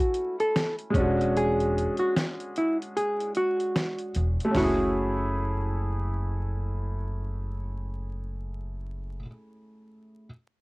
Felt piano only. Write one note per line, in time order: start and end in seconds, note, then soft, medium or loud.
0.00 0.89 A3 medium
0.00 0.90 C#4 medium
0.00 0.92 E4 medium
0.00 0.93 G#5 medium
0.90 4.08 G#3 medium
0.90 4.10 C#4 medium
0.97 4.12 D4 medium
0.97 4.13 F#4 medium
4.45 9.16 A3 medium
4.51 9.19 C#4 medium
4.58 9.22 E4 medium
4.63 9.25 G#4 medium